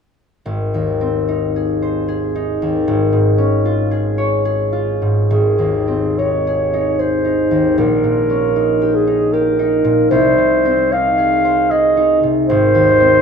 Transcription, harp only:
0.46 G#1
0.74 D#2
1.01 C4
1.28 D#4
1.56 G#4
1.82 C5
2.08 G#4
2.35 D#4
2.62 D#2
2.88 G#1
3.12 G#2
3.38 C#4
3.65 F4
3.91 G#4
4.18 C#5
4.45 G#4
4.72 F4
5.02 G#2
5.31 G#1
5.59 D#2
5.88 C4
6.19 D#4
6.47 G#4
6.73 D#4
6.99 G#4
7.25 D#4
7.51 D#2
7.78 A#1
8.04 A#2
8.30 C#4
8.56 D#4
8.82 G4
9.07 D#4
9.33 G4
9.59 D#4
9.84 A#2
10.11 C2
10.38 C3
10.65 C4
10.92 D#4
11.18 G#4
11.45 C5
11.71 G#4
11.97 D#4
12.23 C3
12.50 G#1
12.75 D#2
13.00 C4

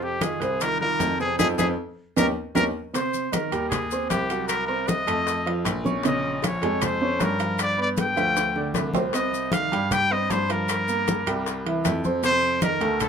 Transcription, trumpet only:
0.03 G4
0.23 G#4
0.62 A#4
0.81 A#4
1.21 G#4
1.39 G#4
1.58 G#4
2.18 A#4
2.56 A#4
2.95 C5
3.33 A#4
3.69 G#4
4.10 G4
4.48 A#4
4.66 A#4
4.88 D#5
6.07 D#5
6.46 C#5
6.85 C5
7.24 A#4
7.62 D5
7.82 D5
8.01 G5
9.14 D#5
9.53 F5
9.92 G5
10.12 D#5
10.31 C5
10.51 A#4
12.25 C5
12.63 A#4
13.02 A4

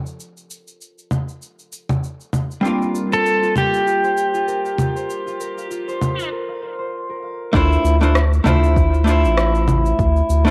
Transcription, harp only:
2.64 A#4
2.81 F5
2.94 F4
3.11 C5
3.42 F4
3.56 A#4
3.74 F5
3.86 F4
4.04 C5
4.34 F4
4.47 A#4
4.65 F5
4.79 F4
4.96 C5
5.26 F4
5.40 A#4
5.57 F5
5.70 F4
5.88 C5
6.18 F4
6.32 A#4
6.49 F5
6.62 C5
6.79 C5
7.10 A#4
7.22 F5

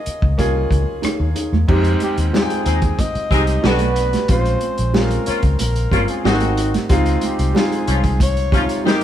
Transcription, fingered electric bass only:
0.07 muted fingered electric bass stroke
0.22 C#2
0.39 C2
0.71 C#2
1.04 muted fingered electric bass stroke
1.20 D#2
1.52 E2
1.69 F2
2.18 D#2
2.66 D#2
3.15 muted fingered electric bass stroke
3.31 C2
3.64 B1
4.29 A#1
4.79 A#1
5.28 muted fingered electric bass stroke
5.43 C#2
5.61 A#1
5.92 G1
6.25 G#1
6.90 C#2
7.39 C2
7.88 C2

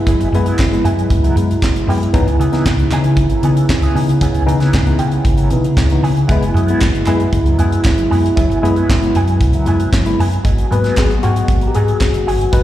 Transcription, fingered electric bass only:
0.07 F#1
0.20 F#1
0.32 F#2
0.59 F#1
0.84 F#2
1.11 C#2
1.36 F#2
1.62 F#1
1.87 F#2
2.14 C#2
2.27 C#2
2.39 C#3
2.66 C#2
2.91 C#3
3.17 G#1
3.43 C#3
3.69 C#2
3.95 C#3
4.21 C#2
4.35 C#2
4.48 C#3
4.74 C#2
4.99 C#3
5.25 G#1
5.51 C#3
5.77 C#2
6.03 C#3
6.29 F#1
6.41 F#1
6.54 F#2
6.81 F#1
7.07 F#2
7.33 C#2
7.59 F#2
7.85 F#1
8.11 F#2
8.37 F#1
8.50 F#1
8.63 F#2
8.89 F#1
9.15 F#2
9.41 C#2
9.67 F#2
9.92 F#1
10.19 F#2
10.45 G#1
10.71 G#2
10.97 G#1
11.24 G#2
11.48 G#1
11.76 G#2
12.00 F#1
12.27 G1
12.53 G#1

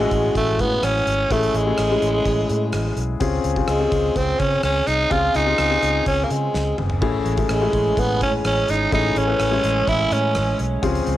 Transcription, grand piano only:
Already playing: A3 G#4 A4
0.00 G#3 C#4 E4 F#4
1.30 A3 C#4 E4 G#4
1.66 A3 C#4 E4 G#4
1.90 G#3 C#4 E4 G#4
3.20 C4 C#4 F4 G#4
3.56 C4 C#4 F4 G#4
3.80 C4 C#4 F4 G#4
5.10 C4 C#4 F4 G#4
5.46 C4 C#4 F4 G#4
5.70 C4 C#4 F4 G#4
7.01 A3 C#4 E4 G#4
7.37 A3 C#4 E4 G#4
7.61 G#3 C#4 E4 G#4
8.92 A3 C#4 E4 G#4
9.27 A3 C#4 E4 B4
9.51 G#3 C#4 E4 G#4
10.82 C4 C#4 F4 G#4

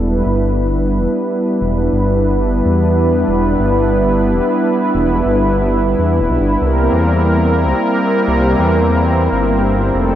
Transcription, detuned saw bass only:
Already playing: E1
0.26 G1
0.99 E1
1.61 E1
1.93 G1
2.66 E2
3.28 E1
3.59 G1
4.32 E1
4.95 E1
5.26 G1
5.99 E2
6.20 D1
6.30 B1
6.41 G1
6.62 C2
6.93 E2
7.66 C2
8.28 C2
8.59 E2
9.32 G1
9.95 F1

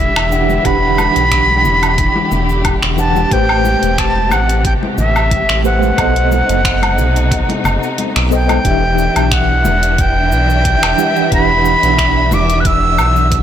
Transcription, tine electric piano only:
Already playing: E3 D4 G4
0.31 E3 D4 G4 F#5
0.63 E3 D4 G4 F#5
2.97 E3 D4 G4 F#5
3.30 A3 G4 B4 C5
5.64 A3 G4 B4 C5
5.96 B3 A4 C5 D#5
8.31 B3 A4 C5 D#5
8.64 E3 D4 G4 E5
10.97 E3 D4 G4 F#5
11.30 E3 D4 G4 F#5

